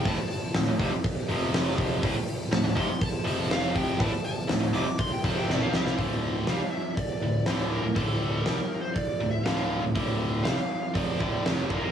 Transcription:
<<
  \new Staff \with { instrumentName = "Lead electric guitar" } { \time 4/4 \key d \minor \tempo 4 = 121 a''8 a''8 r2. | r4 a''8 c'''8 a''4 f''8 g''8 | a''8 a''8 r8 d'''8 c'''16 g''16 a''16 g''16 d''16 f''16 f''8 | r4 f''8 e''8 d''4 r8 bes'8 |
a'8. bes'4 c''16 d''8. e''16 f''8. r16 | r4 f''4 d''4 r8 bes'8 | }
  \new Staff \with { instrumentName = "Distorted electric guitar" } { \clef bass \time 4/4 \key d \minor <d, a,>16 r8. <d, a,>16 <d, a,>16 <f, c>16 r8. <f, c f>4. | <d, a,>16 r8. <d, a,>16 <d, a,>16 <f, c>16 r8. <f, c f>4. | <d, a,>16 r8. <d, a,>16 <d, a,>16 <f, c>16 r8. <f, c f>8 <f, c>16 <bes, f>16 <c g c'>8 | <d, a, d>4 <c g>16 r4 r16 <d, a,>8 <d, a, d>8. <d, a,>16 |
<d, a, d>4 <c g>16 r4 r16 <d, a,>8 <d, a, d>8. <d, a,>16 | <d, a, d>4 <c g>16 r8. <f, c f>8 <d, a, d>8 <f, c f>8 <g, d>16 <f, c>16 | }
  \new Staff \with { instrumentName = "Fingered electric bass" } { \clef bass \time 4/4 \key d \minor d,,16 r8. d,,16 d,,16 f,,16 r8. f,,4. | d,,16 r8. d,,16 d,,16 f,,16 r8. f,,4. | d,,16 r8. d,,16 d,,16 f,,16 r8. f,,8 f,,16 bes,,16 c,8 | d,,4 c,16 r4 r16 d,,8 d,,8. d,,16 |
d,,4 c,16 r4 r16 d,,8 d,,8. d,,16 | d,,4 c,16 r8. f,,8 d,,8 f,,8 g,,16 f,,16 | }
  \new DrumStaff \with { instrumentName = "Drums" } \drummode { \time 4/4 <hho bd>8 hho8 <hho sn>8 <hho bd>8 <hho bd>8 hho8 <hho sn>8 <hho bd>8 | <hho bd>8 hho8 <hho sn>8 <hho bd>8 <hho bd>8 hho8 <hho sn>8 <hho bd>8 | <hho bd>8 hho8 <hho sn>8 hho8 <hho bd>8 <hho bd>8 sn8 sn16 sn16 | <hho bd>4 <hho sn>4 <hho bd>4 <hho sn>4 |
<hho bd>4 <hho sn>4 <hho bd>4 <hho sn>4 | <hho bd>4 <hho sn>4 <hho bd>8 bd8 <hho sn>8 bd8 | }
>>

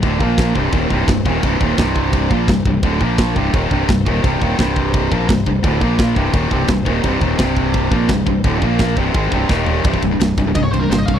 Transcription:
<<
  \new Staff \with { instrumentName = "Lead electric guitar" } { \time 4/4 \key c \minor \tempo 4 = 171 r1 | r1 | r1 | r1 |
r1 | r1 | r1 | r2 ees''16 des''16 c''16 bes'16 c''16 ees''16 f''16 des''16 | }
  \new Staff \with { instrumentName = "String section" } { \time 4/4 \key c \minor << { <c g g'>8 <bes, f bes'>4 <c g c''>2~ <c g c''>8~ | <c g c''>1~ | <c g c''>8 <bes, f bes'>4 <c g c''>2~ <c g c''>8~ | <c g c''>1~ |
<c g c''>8 <bes, f bes'>4 <c g c''>2~ <c g c''>8~ | <c g c''>1~ | <c g c''>8 <bes, f bes'>4 <c g c''>4. <bes, bes ees''>4 | r1 | } \\ { ees'8 f'4 ees'2~ ees'8~ | ees'1~ | ees'8 f'4 ees'2~ ees'8~ | ees'1~ |
ees'8 f'4 ees'2~ ees'8~ | ees'1~ | ees'8 f'4 ees'2~ ees'8 | r1 | } >> }
  \new Staff \with { instrumentName = "Distorted electric guitar" } { \clef bass \time 4/4 \key c \minor <d, a, d>8 <bes, f bes>4 <c, g, c>8 <ees, bes, ees>8 <c, g, c>8 <c, g,>8 <ees, bes, ees>8 | <c, g, c>8 <ees, bes, ees>8 <c, g, c>4. <bes, f bes>8 <c, g,>8 <c, g,>8 | <d, a, d>8 <bes, f bes>4 <c, g, c>8 <ees, bes, ees>8 <c, g, c>8 <c, g,>8 <ees, bes, ees>8 | <c, g, c>8 <ees, bes, ees>8 <c, g, c>4. <bes, f bes>8 <c, g,>8 <c, g,>8 |
<d, a, d>8 <bes, f bes>4 <c, g, c>8 <ees, bes, ees>8 <c, g, c>8 <c, g,>8 <ees, bes, ees>8 | <c, g, c>8 <ees, bes, ees>8 <c, g, c>4. <bes, f bes>8 <c, g,>8 <c, g,>8 | <d, a, d>8 <bes, f bes>4 <c, g, c>8 <aes, ees aes>8 <c, g, c>8 <ees, bes, ees>4 | <c, g, c>8 <c, g,>16 <c, g,>16 <c, g,>8 <c, g,>16 <c, g,>16 <c, g,>8 <c, g,>16 <c, g,>16 <c, g,>8 <c, g,>16 r16 | }
  \new Staff \with { instrumentName = "Distorted electric guitar" } { \clef bass \time 4/4 \key c \minor <d, a, d>8 <bes, f bes>4 <c, g, c>8 <ees, bes, ees>8 <c, g, c>8 <c, g,>8 <ees, bes, ees>8 | <c, g, c>8 <ees, bes, ees>8 <c, g, c>4. <bes, f bes>8 <c, g,>8 <c, g,>8 | <d, a, d>8 <bes, f bes>4 <c, g, c>8 <ees, bes, ees>8 <c, g, c>8 <c, g,>8 <ees, bes, ees>8 | <c, g, c>8 <ees, bes, ees>8 <c, g, c>4. <bes, f bes>8 <c, g,>8 <c, g,>8 |
<d, a, d>8 <bes, f bes>4 <c, g, c>8 <ees, bes, ees>8 <c, g, c>8 <c, g,>8 <ees, bes, ees>8 | <c, g, c>8 <ees, bes, ees>8 <c, g, c>4. <bes, f bes>8 <c, g,>8 <c, g,>8 | <d, a, d>8 <bes, f bes>4 <c, g, c>8 <aes, ees aes>8 <c, g, c>8 <ees, bes, ees>4 | <c, g, c>8 <c, g,>16 <c, g,>16 <c, g,>8 <c, g,>16 <c, g,>16 <c, g,>8 <c, g,>16 <c, g,>16 <c, g,>8 <c, g,>16 g,16 | }
  \new Staff \with { instrumentName = "Fingered electric bass" } { \clef bass \time 4/4 \key c \minor d,,8 bes,,4 c,,8 ees,,8 c,,8 c,,8 ees,,8 | c,,8 ees,,8 c,,4. bes,,8 c,,8 c,,8 | d,,8 bes,,4 c,,8 ees,,8 c,,8 c,,8 ees,,8 | c,,8 ees,,8 c,,4. bes,,8 c,,8 c,,8 |
d,,8 bes,,4 c,,8 ees,,8 c,,8 c,,8 ees,,8 | c,,8 ees,,8 c,,4. bes,,8 c,,8 c,,8 | d,,8 bes,,4 c,,8 aes,,8 c,,8 ees,,4 | c,,8 c,,8 c,,8 c,,8 c,,8 c,,8 g,,8 c,,8 | }
  \new DrumStaff \with { instrumentName = "Drums" } \drummode { \time 4/4 <cymc bd>8 bd8 <cymc bd sn>8 bd8 <cymc bd>8 bd8 <cymc bd sn>8 bd8 | <cymc bd>8 bd8 <cymc bd sn>8 bd8 <cymc bd>8 bd8 <cymc bd sn>8 bd8 | <cymc bd>8 bd8 <cymc bd sn>8 bd8 <cymc bd>8 bd8 <cymc bd sn>8 bd8 | <cymc bd>8 bd8 <cymc bd sn>8 bd8 <cymc bd>8 bd8 <cymc bd sn>8 bd8 |
<cymc bd>8 bd8 <cymc bd sn>8 bd8 <cymc bd>8 bd8 <cymc bd sn>8 bd8 | <cymc bd>8 bd8 <cymc bd sn>8 bd8 <cymc bd>8 bd8 <cymc bd sn>8 bd8 | <cymc bd>8 bd8 <cymc bd sn>8 bd8 <cymc bd>8 bd8 <bd sn>8 tomfh8 | <bd cymr>16 bd16 <bd cymr>8 <cymr sn>8 <bd cymr>8 <bd cymr>8 cymr8 <cymr sn>8 <bd cymr>8 | }
>>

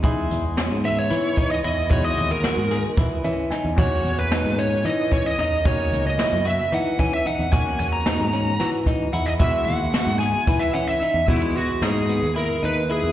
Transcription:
<<
  \new Staff \with { instrumentName = "Lead electric guitar" } { \time 7/8 \key e \lydian \tempo 4 = 112 r4. e''16 cis''4 dis''16 dis''8 | cis''16 dis''8 ais'4 r4. r16 | cis''8. b'8. cis''8 dis''8 cis''16 dis''16 dis''8 | cis''8. dis''8. e''8 fis''8 gis''16 e''16 fis''8 |
gis''8 gis''16 ais''4. r8. fis''16 dis''16 | e''8 fis''4 gis''8. e''16 fis''16 e''8. | e'8 fis'8 gis'4 ais'8 b'8 gis'8 | }
  \new Staff \with { instrumentName = "Clean electric guitar" } { \time 7/8 \key e \lydian e'4 cis'8 b8 e'8 dis'8 e'8 | e'4 fis'8 gis'8 e'8 cis'8 dis'8 | fis'4 dis'8 cis'8 dis'8 cis'8 dis'8 | dis'4 e'8 fis'8 dis'8 cis'8 dis'8 |
fis'4 dis'8 cis'8 fis'8 dis'8 e'8 | e'4 fis'8 gis'8 e'8 cis'8 dis'8 | b4 dis'8 b8 e'8 dis'8 e'8 | }
  \new Staff \with { instrumentName = "Grand piano" } { \time 7/8 \key e \lydian << { r2. r8 | r2 r8 e''8 gis''8 | r2. r8 | r2. r8 |
r2. r8 | r2. r8 | r2. r8 | } \\ { <gis dis' gis'>2.~ <gis dis' gis'>8 | <gis dis' fis'>2.~ <gis dis' fis'>8 | <ais, cis' fis'>2.~ <ais, cis' fis'>8 | <ais cis' fis'>2.~ <ais cis' fis'>8 |
<ais cis' fis'>2.~ <ais cis' fis'>8 | <gis e' fis'>2.~ <gis e' fis'>8 | <gis dis' fis'>2.~ <gis dis' fis'>8 | } >> }
  \new Staff \with { instrumentName = "Picked electric bass" } { \clef bass \time 7/8 \key e \lydian e,16 r16 e,8. gis,8. e4 e,8~ | e,8 dis,8 r16 gis,8 r16 e8 e8 r16 e,16 | e,8 e,8. gis,8. e4 e,8~ | e,8 cis,8 r16 fis,8 r16 e8 e8 r16 e,16~ |
e,16 r16 e,8. gis,8. e4 e,8 | e,8 dis,8 r16 gis,8 r16 e8 e8 r16 e,16 | e,8 r8 gis,8. dis,8 r16 dis,8. e,16 | }
  \new DrumStaff \with { instrumentName = "Drums" } \drummode { \time 7/8 <hh bd>8 hh8 <hh sn>8 hh8 hh8 <hh bd>8 hh8 | <hh bd>8 hh8 <hh sn>8 <hh sn>8 <hh bd sn>8 hh8 <hh sn>8 | <hh bd>8 hh8 <hh sn>8 hh8 hh8 <hh bd sn>8 hh8 | <hh bd>8 hh8 <hh sn>8 hh8 hh8 <hh bd sn>8 hh8 |
<hh bd>8 hh8 <hh sn>8 hh8 <hh sn>8 <hh bd sn>8 hh8 | <hh bd>8 hh8 <hh sn>8 hh8 <hh bd>8 hh8 hh8 | <hh bd>8 hh8 <hh sn>8 hh8 hh8 hh8 hh8 | }
>>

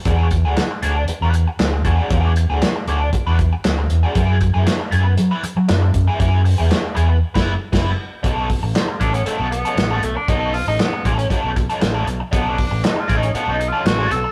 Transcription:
<<
  \new Staff \with { instrumentName = "Overdriven electric guitar" } { \time 4/4 \key b \mixolydian \tempo 4 = 117 <d' fis' gis'>8 r16 <d' fis' gis'>16 r8 <d' fis' gis'>8 r16 <d' fis' b'>8 r8. <d' fis' gis'>16 <d' fis' gis'>16 | <d' fis' gis'>8 r16 <d' fis' gis'>16 r8 <d' fis' gis'>8 r16 <d' fis' b'>8 r4 <d' fis' gis'>16 | <b e' gis'>8 r16 <b e' gis'>16 r8 <b e' gis'>8 r16 <b e' b'>8 r4 <b e' gis'>16 | <b e' gis'>8 r16 <b e' gis'>16 r8 <b e' gis'>8 r16 <b e' b'>8 r16 <b e' b'>8 r8 |
<cis' dis' a'>8 r4 <cis' dis' a'>8 <cis' dis' a'>8 r16 <cis' dis' a'>16 r16 <cis' dis' a'>8 r16 | <cis' dis' a'>8 r4 <cis' dis' a'>8 <cis' dis' a'>8 r16 <cis' dis' a'>16 r16 <cis' dis' a'>8 r16 | <cis' dis' a'>8 r4 <cis' dis' a'>8 <cis' dis' a'>8 r16 <cis' dis' a'>16 r16 <cis' dis' a'>8 r16 | }
  \new Staff \with { instrumentName = "Tenor saxophone" } { \time 4/4 \key b \mixolydian r1 | r1 | r1 | r1 |
r4. d'16 b16 a16 b16 b4 a16 d'16 | dis'8 eis'16 dis'16 b8 r2 r8 | \tuplet 3/2 { b8 d'8 d'8 dis'8 eis'8 dis'8 b8 dis'8 eis'8 } fis'8 a'8 | }
  \new Staff \with { instrumentName = "Fingered electric bass" } { \clef bass \time 4/4 \key b \mixolydian e,8. d,16 r8 d,8 r16 e,8 r16 d,8 e,16 r16 | e,8. d,16 r8 d,8 r16 e,8 r16 d,8 e,16 r16 | fis,8. fis,16 r8 fis,8 fis16 r8 fis16 fis,8 fis,16 r16 | fis,8. e,16 r8 e,8 r16 fis,,8 r16 fis,,8 r8 |
b,,8. a,,16 r8 a,,8 r16 b,,8 r16 a,,8 b,,16 r16 | b,,8. a,,16 r8 a,,8 r16 b,,8 r16 a,,8 b,,16 r16 | b,,8. a,,16 r8 a,,8 r16 b,,8 r16 a,,8 b,,16 r16 | }
  \new DrumStaff \with { instrumentName = "Drums" } \drummode { \time 4/4 <hh bd>8 <hh bd>8 <hc hh sn>8 hh8 hh8 hh8 <hc hh sn>8 <hh bd>8 | <hh bd>8 hh8 <hc hh sn>8 hh8 <hh bd>8 <hh bd>8 <hc hh sn>8 hh8 | <hh bd>8 <hh bd>8 <hc hh sn>8 hh8 hh8 hh8 <hc hh sn>8 <hh bd>8 | <hh bd>8 hho8 <hc hh sn>8 hh8 r16 <cymc bd sn>8. <cymc bd sn>4 |
<hh bd>8 <hho bd>8 <hc hh sn>8 <hh bd>16 hh16 hh8 hh16 hh16 <hc hh sn>8 hh8 | <hh bd>8 hho8 <hc hh sn>8 <hh bd>16 hh16 <hh bd>8 <hh bd>16 hh16 <hc hh sn>8 hh8 | <hh bd>8 <hho bd>8 <hc hh sn>8 <hh bd>16 hh16 hh8 hh8 <hc hh sn>8 hh8 | }
>>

